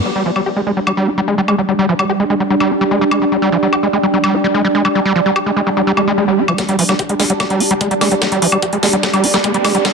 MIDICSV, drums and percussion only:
0, 0, Header, 1, 2, 480
1, 0, Start_track
1, 0, Tempo, 408163
1, 62, Time_signature, 4, 2, 24, 8
1, 11678, End_track
2, 0, Start_track
2, 0, Title_t, "Drums"
2, 422, Note_on_c, 9, 76, 36
2, 540, Note_off_c, 9, 76, 0
2, 1022, Note_on_c, 9, 76, 78
2, 1140, Note_off_c, 9, 76, 0
2, 1742, Note_on_c, 9, 76, 38
2, 1860, Note_off_c, 9, 76, 0
2, 2342, Note_on_c, 9, 76, 70
2, 2460, Note_off_c, 9, 76, 0
2, 3062, Note_on_c, 9, 76, 37
2, 3180, Note_off_c, 9, 76, 0
2, 3662, Note_on_c, 9, 76, 76
2, 3780, Note_off_c, 9, 76, 0
2, 4382, Note_on_c, 9, 76, 36
2, 4500, Note_off_c, 9, 76, 0
2, 4983, Note_on_c, 9, 76, 75
2, 5100, Note_off_c, 9, 76, 0
2, 5703, Note_on_c, 9, 76, 39
2, 5820, Note_off_c, 9, 76, 0
2, 6303, Note_on_c, 9, 76, 72
2, 6420, Note_off_c, 9, 76, 0
2, 7022, Note_on_c, 9, 76, 41
2, 7140, Note_off_c, 9, 76, 0
2, 7622, Note_on_c, 9, 76, 83
2, 7740, Note_off_c, 9, 76, 0
2, 7742, Note_on_c, 9, 36, 123
2, 7742, Note_on_c, 9, 38, 46
2, 7742, Note_on_c, 9, 42, 80
2, 7860, Note_off_c, 9, 36, 0
2, 7860, Note_off_c, 9, 38, 0
2, 7860, Note_off_c, 9, 42, 0
2, 7862, Note_on_c, 9, 42, 51
2, 7980, Note_off_c, 9, 42, 0
2, 7982, Note_on_c, 9, 46, 104
2, 8100, Note_off_c, 9, 46, 0
2, 8102, Note_on_c, 9, 38, 43
2, 8102, Note_on_c, 9, 76, 38
2, 8220, Note_off_c, 9, 38, 0
2, 8220, Note_off_c, 9, 76, 0
2, 8222, Note_on_c, 9, 36, 123
2, 8223, Note_on_c, 9, 42, 80
2, 8340, Note_off_c, 9, 36, 0
2, 8340, Note_off_c, 9, 42, 0
2, 8342, Note_on_c, 9, 42, 55
2, 8460, Note_off_c, 9, 42, 0
2, 8462, Note_on_c, 9, 38, 53
2, 8462, Note_on_c, 9, 46, 99
2, 8580, Note_off_c, 9, 38, 0
2, 8580, Note_off_c, 9, 46, 0
2, 8582, Note_on_c, 9, 42, 56
2, 8700, Note_off_c, 9, 42, 0
2, 8702, Note_on_c, 9, 38, 52
2, 8702, Note_on_c, 9, 42, 82
2, 8702, Note_on_c, 9, 76, 75
2, 8703, Note_on_c, 9, 36, 109
2, 8820, Note_off_c, 9, 36, 0
2, 8820, Note_off_c, 9, 38, 0
2, 8820, Note_off_c, 9, 42, 0
2, 8820, Note_off_c, 9, 76, 0
2, 8823, Note_on_c, 9, 42, 53
2, 8940, Note_off_c, 9, 42, 0
2, 8943, Note_on_c, 9, 46, 104
2, 9060, Note_off_c, 9, 46, 0
2, 9063, Note_on_c, 9, 42, 58
2, 9180, Note_off_c, 9, 42, 0
2, 9183, Note_on_c, 9, 36, 112
2, 9183, Note_on_c, 9, 42, 84
2, 9300, Note_off_c, 9, 36, 0
2, 9300, Note_off_c, 9, 42, 0
2, 9303, Note_on_c, 9, 42, 56
2, 9420, Note_off_c, 9, 42, 0
2, 9423, Note_on_c, 9, 38, 60
2, 9423, Note_on_c, 9, 46, 94
2, 9423, Note_on_c, 9, 76, 38
2, 9540, Note_off_c, 9, 38, 0
2, 9540, Note_off_c, 9, 46, 0
2, 9540, Note_off_c, 9, 76, 0
2, 9543, Note_on_c, 9, 42, 57
2, 9660, Note_off_c, 9, 42, 0
2, 9663, Note_on_c, 9, 36, 127
2, 9663, Note_on_c, 9, 38, 61
2, 9663, Note_on_c, 9, 42, 75
2, 9780, Note_off_c, 9, 36, 0
2, 9781, Note_off_c, 9, 38, 0
2, 9781, Note_off_c, 9, 42, 0
2, 9783, Note_on_c, 9, 42, 51
2, 9900, Note_off_c, 9, 42, 0
2, 9903, Note_on_c, 9, 46, 116
2, 10020, Note_off_c, 9, 46, 0
2, 10023, Note_on_c, 9, 76, 76
2, 10140, Note_off_c, 9, 76, 0
2, 10143, Note_on_c, 9, 36, 127
2, 10143, Note_on_c, 9, 42, 82
2, 10260, Note_off_c, 9, 36, 0
2, 10260, Note_off_c, 9, 42, 0
2, 10263, Note_on_c, 9, 42, 50
2, 10380, Note_off_c, 9, 42, 0
2, 10383, Note_on_c, 9, 38, 64
2, 10383, Note_on_c, 9, 46, 100
2, 10500, Note_off_c, 9, 38, 0
2, 10500, Note_off_c, 9, 46, 0
2, 10503, Note_on_c, 9, 42, 52
2, 10620, Note_off_c, 9, 42, 0
2, 10623, Note_on_c, 9, 36, 117
2, 10623, Note_on_c, 9, 38, 67
2, 10623, Note_on_c, 9, 42, 82
2, 10740, Note_off_c, 9, 36, 0
2, 10740, Note_off_c, 9, 38, 0
2, 10740, Note_off_c, 9, 42, 0
2, 10743, Note_on_c, 9, 42, 54
2, 10743, Note_on_c, 9, 76, 36
2, 10860, Note_off_c, 9, 42, 0
2, 10860, Note_off_c, 9, 76, 0
2, 10863, Note_on_c, 9, 46, 107
2, 10980, Note_off_c, 9, 46, 0
2, 10983, Note_on_c, 9, 38, 65
2, 10983, Note_on_c, 9, 42, 55
2, 11100, Note_off_c, 9, 38, 0
2, 11100, Note_off_c, 9, 42, 0
2, 11103, Note_on_c, 9, 36, 119
2, 11103, Note_on_c, 9, 42, 77
2, 11220, Note_off_c, 9, 36, 0
2, 11220, Note_off_c, 9, 42, 0
2, 11223, Note_on_c, 9, 42, 53
2, 11340, Note_off_c, 9, 42, 0
2, 11343, Note_on_c, 9, 38, 74
2, 11343, Note_on_c, 9, 46, 101
2, 11343, Note_on_c, 9, 76, 77
2, 11460, Note_off_c, 9, 38, 0
2, 11460, Note_off_c, 9, 46, 0
2, 11460, Note_off_c, 9, 76, 0
2, 11462, Note_on_c, 9, 42, 56
2, 11580, Note_off_c, 9, 42, 0
2, 11583, Note_on_c, 9, 36, 127
2, 11583, Note_on_c, 9, 38, 71
2, 11583, Note_on_c, 9, 42, 76
2, 11678, Note_off_c, 9, 36, 0
2, 11678, Note_off_c, 9, 38, 0
2, 11678, Note_off_c, 9, 42, 0
2, 11678, End_track
0, 0, End_of_file